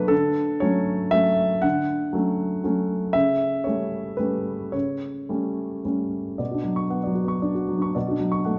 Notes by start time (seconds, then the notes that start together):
Already playing: B2 F#3 A3 D4 B4 F#5
0.08 D3 A4
0.60 F#3 A3 C#4 C#5
1.11 F#3 A3 C#4 E5
1.62 D3 F#5
2.13 F#3 A3 C#4
2.64 F#3 A3 C#4
3.13 C#3 E5
3.64 G3 A3 C#4 C#5
4.17 G3 A3 C#4 B4
4.72 C#3 C#5
5.29 G3 A3 C#4
5.85 G3 A3 C#4
6.38 B2 D5
6.51 D4 F#4
6.64 F#3
6.76 C#6
6.90 B3 F#5
7.03 F#3 D5
7.15 F#4
7.24 B3
7.28 C#6
7.42 D4 D5
7.55 F#4
7.69 F#3
7.78 D4 C#6
7.95 B2 D5
8.08 D4 F#4
8.20 F#3
8.32 C#6
8.45 A3 F#5